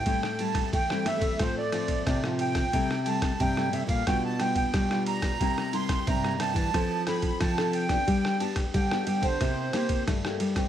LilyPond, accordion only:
\new Staff \with { instrumentName = "Accordion" } { \time 4/4 \key c \major \tempo 4 = 90 g''8 a''8 g''8 e''8 c''16 d''8. d''8 g''8~ | g''8 a''8 g''8 e''16 f''16 g''16 a''16 g''16 g''8. bes''8~ | bes''8 c'''8 bes''8 a''4 b''8 a''8 g''8~ | g''8 a''8 g''8. c''4~ c''16 r4 | }